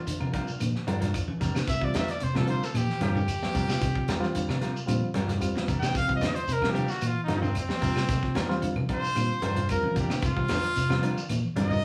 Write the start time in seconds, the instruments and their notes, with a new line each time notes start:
Already playing: trumpet F4
0.07 clean electric guitar D3, closed hi-hat, shekere
0.20 fingered electric bass C3, clean electric guitar D4 F4 A#4, high conga, claves
0.33 clean electric guitar C3 G3 D4 F4 A#4, kick, closed hi-hat, shekere
0.47 shekere
0.60 fingered electric bass A#2, clean electric guitar D3, closed hi-hat, high conga, claves, shekere
0.76 snare
0.87 fingered electric bass G2, clean electric guitar G3 D4 F4 A#4, closed hi-hat, high conga, shekere
1.01 clean electric guitar F3 D4 F4 A#4, snare, closed hi-hat, low conga, shekere
1.14 kick, closed hi-hat, claves, shekere
1.28 clean electric guitar E3, high conga
1.40 fingered electric bass C3, clean electric guitar G3 D4 A#4, kick, snare, closed hi-hat, shekere
1.55 fingered electric bass C3, clean electric guitar D3, snare, claves, shekere
1.67 fingered electric bass C3, trumpet E5, kick, closed hi-hat, low conga, shekere
1.80 clean electric guitar E3, reed electric piano G3 C4 F4, kick
1.85 trumpet D5
1.94 clean electric guitar D3 G3 D4 F4 A#4, trumpet E5, snare, closed hi-hat, high conga, claves, shekere
2.08 trumpet D5, snare, closed hi-hat, shekere
2.20 clean electric guitar C3, trumpet C5, closed hi-hat, shekere
2.33 fingered electric bass C3, reed electric piano G3 C4 F4, clean electric guitar D4 F4 A#4, trumpet A4, snare, high conga, low conga, claves
2.47 clean electric guitar D3 G3 F4 A#4, trumpet C5, closed hi-hat, shekere
2.63 trumpet A4, snare, shekere
2.74 fingered electric bass A#2, clean electric guitar E3, trumpet G4, closed hi-hat, high conga, claves, shekere
2.90 snare
3.00 fingered electric bass G2, clean electric guitar D3 G3 F4 A#4, reed electric piano G3 C4 F4, trumpet G4, muted clean electric guitar stroke, snare, closed hi-hat, high conga, shekere
3.15 clean electric guitar D3, low conga, shekere
3.28 closed hi-hat, claves, shekere
3.43 clean electric guitar G3, snare, high conga
3.53 fingered electric bass C3, reed electric piano G3 C4 D4, clean electric guitar G3 D4 F4 A#4, kick, closed hi-hat, shekere
3.69 fingered electric bass C3, clean electric guitar F3, snare, claves, shekere
3.81 fingered electric bass C3, kick, closed hi-hat, low conga, shekere
3.95 clean electric guitar F3, kick
4.08 clean electric guitar E3 G3 D4 F4 A#4, snare, closed hi-hat, high conga, claves, shekere
4.20 reed electric piano G3 C4 F4, snare, shekere
4.35 clean electric guitar D3, closed hi-hat, shekere
4.49 fingered electric bass C3, clean electric guitar D4 F4 A#4, snare, high conga, claves
4.61 clean electric guitar C3 G3 F4 A#4, snare, closed hi-hat, shekere
4.76 shekere
4.86 fingered electric bass A#2, clean electric guitar D3, reed electric piano G3 C4 F4, closed hi-hat, high conga, claves, shekere
5.14 fingered electric bass G2, clean electric guitar G3 D4 F4 A#4, snare, closed hi-hat, high conga, shekere
5.28 clean electric guitar F3, snare, closed hi-hat, low conga, shekere
5.40 reed electric piano G3 C4 F4, closed hi-hat, claves, shekere
5.55 clean electric guitar E3, snare, high conga
5.68 fingered electric bass C3, clean electric guitar G3 D4 A#4, muted clean electric guitar stroke, kick, closed hi-hat, shekere
5.79 fingered electric bass C3, clean electric guitar D3, trumpet G5, high conga, claves, shekere
5.83 snare
5.95 fingered electric bass C3, trumpet F5, kick, snare, closed hi-hat, low conga, shekere
6.07 clean electric guitar E3, reed electric piano G3 C4 F4, kick
6.16 trumpet D#5
6.21 clean electric guitar D3 G3 D4 F4, muted clean electric guitar stroke, snare, closed hi-hat, high conga, claves, shekere
6.35 trumpet C5, closed hi-hat, shekere
6.47 clean electric guitar C3, closed hi-hat, shekere
6.53 trumpet A#4
6.61 fingered electric bass C3, reed electric piano G3 C4 F4, clean electric guitar D4 F4 A#4, snare, high conga, low conga, claves
6.70 clean electric guitar G3 D4, trumpet G4
6.75 clean electric guitar D3 F4 A#4, closed hi-hat, shekere
6.88 trumpet F#4, snare, shekere
7.01 fingered electric bass A#2, clean electric guitar E3, closed hi-hat, claves, shekere
7.07 trumpet F4
7.24 clean electric guitar G3, reed electric piano G3, trumpet D#4
7.28 fingered electric bass G2, clean electric guitar D3 D4 F4 A#4, reed electric piano C4 F4, snare, closed hi-hat, high conga, shekere
7.41 clean electric guitar D3 D4 F4 A#4, trumpet C4, low conga, shekere
7.55 closed hi-hat, claves, shekere
7.59 trumpet C4
7.69 clean electric guitar G3, snare, high conga
7.81 fingered electric bass C3, clean electric guitar G3 D4 F4 A#4, reed electric piano G3 C4 F4, kick, closed hi-hat, shekere
7.96 fingered electric bass C3, clean electric guitar F3, snare, claves, shekere
8.09 fingered electric bass C3, kick, snare, closed hi-hat, low conga, shekere
8.22 clean electric guitar F3, kick, snare
8.35 clean electric guitar E3 G3 D4 F4 A#4, snare, closed hi-hat, high conga, claves, shekere
8.49 reed electric piano G3 C4 F4, snare, shekere
8.62 clean electric guitar D3, closed hi-hat, shekere
8.76 fingered electric bass C3, high conga, low conga, claves
8.89 clean electric guitar C3 G3 D4 F4 A#4, kick, closed hi-hat, shekere
8.93 trumpet C5
9.04 shekere
9.15 fingered electric bass A#2, clean electric guitar D3, reed electric piano G3 C4 F4, closed hi-hat, claves, shekere
9.42 fingered electric bass G2, clean electric guitar G3 D4 F4 A#4, trumpet C5, closed hi-hat, high conga, shekere
9.56 clean electric guitar F3, closed hi-hat, low conga, shekere
9.69 reed electric piano G3 C4 F4, trumpet A#4, kick, closed hi-hat, claves, shekere
9.83 clean electric guitar E3, high conga
9.95 fingered electric bass C3, clean electric guitar G3 D4 F4 A#4, trumpet G4, kick, closed hi-hat, shekere
10.09 fingered electric bass C3, clean electric guitar D3, snare, claves, shekere
10.22 fingered electric bass C3, trumpet F4, kick, closed hi-hat, low conga, shekere
10.36 clean electric guitar E3, reed electric piano G3 C4 F4, kick
10.48 clean electric guitar D3 G3 D4 F4 A#4, snare, closed hi-hat, high conga, claves, shekere
10.63 closed hi-hat, shekere
10.76 clean electric guitar C3, closed hi-hat, shekere
10.89 fingered electric bass C3, reed electric piano G3 C4 F4, clean electric guitar D4 F4 A#4, snare, high conga, claves
11.02 clean electric guitar D3 G3 D4 F4 A#4, closed hi-hat, shekere
11.17 shekere
11.29 fingered electric bass A#2, clean electric guitar E3, closed hi-hat, high conga, claves, shekere
11.56 fingered electric bass G2, clean electric guitar D3 G3 D4 F4 A#4, reed electric piano G3 C4 D4, trumpet D#5, snare, closed hi-hat, high conga, shekere
11.69 clean electric guitar D3 D4 A#4, low conga, shekere